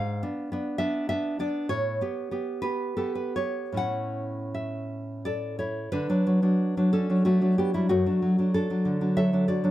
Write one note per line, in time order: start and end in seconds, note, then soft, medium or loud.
0.00 0.21 G#2 medium
0.00 0.76 F5 loud
0.23 0.51 B3 medium
0.23 0.52 D4 medium
0.52 0.78 B3 medium
0.52 0.78 D4 medium
0.78 1.08 B3 medium
0.78 1.09 D4 medium
0.78 1.07 E5 loud
1.09 1.38 B3 medium
1.09 1.39 D4 medium
1.09 1.38 E5 loud
1.39 1.67 B3 medium
1.39 1.67 D4 medium
1.39 1.69 D5 medium
1.69 1.99 A2 medium
1.69 2.59 C#5 loud
2.01 2.30 B3 medium
2.01 2.31 G4 medium
2.31 2.62 B3 medium
2.31 2.62 G4 medium
2.62 2.95 B3 medium
2.62 2.96 G4 medium
2.62 2.95 B4 medium
2.97 3.36 B3 medium
2.97 3.36 G4 medium
2.97 3.15 A4 medium
3.15 3.36 B4 medium
3.36 3.74 B3 soft
3.36 3.74 G4 soft
3.36 3.76 C#5 medium
3.72 5.86 A2 medium
3.72 5.87 C#4 soft
3.72 5.58 E4 soft
3.77 4.50 F#5 medium
4.54 5.21 E5 medium
5.25 5.57 A4 medium
5.25 5.58 D5 medium
5.59 5.91 E4 medium
5.59 5.91 C#5 medium
5.92 6.08 D3 medium
5.92 6.08 D4 medium
5.92 6.88 B4 loud
6.09 6.25 F#3 medium
6.09 6.41 D4 medium
6.27 6.41 F#3 medium
6.42 6.76 F#3 soft
6.42 6.76 D4 medium
6.77 7.08 F#3 medium
6.77 6.92 D4 medium
6.93 7.23 C#4 medium
6.93 7.09 D4 medium
6.93 7.24 A4 medium
7.10 7.24 F#3 medium
7.10 7.40 D4 medium
7.25 7.41 F#3 medium
7.25 7.55 A3 medium
7.25 7.55 F#4 medium
7.41 7.73 F#3 soft
7.41 7.57 D4 soft
7.58 7.73 B3 medium
7.58 7.73 D4 medium
7.58 7.73 G4 medium
7.74 7.88 F#3 soft
7.74 7.89 G3 medium
7.74 7.88 D4 medium
7.74 7.89 E4 medium
7.89 8.05 F#2 medium
7.89 8.51 A3 medium
7.89 8.52 F#4 medium
8.06 8.21 F#3 medium
8.06 8.38 D4 medium
8.22 8.37 F#3 medium
8.38 8.69 F#3 soft
8.38 8.54 D4 medium
8.54 8.69 D4 medium
8.54 9.14 A4 loud
8.70 9.00 F#3 soft
8.70 9.00 D4 medium
8.85 9.47 D3 medium
9.01 9.15 F#3 soft
9.01 9.33 D4 medium
9.17 9.32 F#3 medium
9.17 9.46 A4 medium
9.17 9.46 E5 loud
9.33 9.63 F#3 soft
9.33 9.47 D4 medium
9.48 9.71 D3 medium
9.48 9.71 F#4 medium
9.48 9.71 D5 medium
9.64 9.71 F#3 medium
9.64 9.71 D4 medium